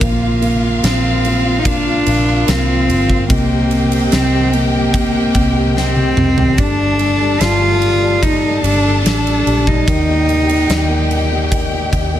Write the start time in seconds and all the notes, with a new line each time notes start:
0.00 A#1 A#3 C4 F4 A#4 F5, kick, ride
0.21 F4
0.42 A#3, ride
0.62 F4
0.83 A#1 A#3 C4, snare, ride
1.03 F4
1.25 A#3, ride
1.45 F4
1.59 D#4
1.65 A#3 D4, kick, ride
1.85 F4
2.05 A#1 A#3, ride
2.25 F4
2.46 C2 A#3 C4, snare, ride
2.68 F4
2.87 G1 A#3, ride
3.08 F4, kick
3.28 C2 A#3 C4 G4 D#5 G5, kick, ride
3.50 G4
3.70 C4, ride
3.90 G4, ride
4.11 C2 C4, snare, ride
4.31 G4
4.52 A#3 C4, ride
4.74 G4
4.93 C4, kick, ride
5.14 G4
5.34 C2 C4, kick, ride
5.55 G4
5.75 C4, snare
5.96 G4, high tom
6.17 C2 C4, mid tom
6.38 G4, floor tom
6.58 G1 G3 A3 D4 G4 A4 D5 A5, kick, ride
6.79 G3
6.99 G3, ride
7.21 G3
7.39 G1 G3 F4, snare, ride
7.61 G3
7.82 G3, ride
8.02 G3
8.22 D#4 A4 D5 A5, kick, ride
8.44 G3
8.64 G1 G3 D4, ride
8.86 G3
9.04 A1 G3 D4, snare, ride
9.27 G3, ride
9.46 A#1 G3, ride
9.67 G3 D#4, kick
9.87 D#2 D#3 G4 D5 D#5 G5, kick, ride
10.09 A#3
10.29 D#3, ride
10.49 A#3, ride
10.68 D#2 D#3, snare, ride
10.89 A#3
11.11 D#3, ride
11.32 A#3
11.51 D#3, kick, ride
11.72 A#3
11.93 D#2 D#3, kick, ride
12.14 A#3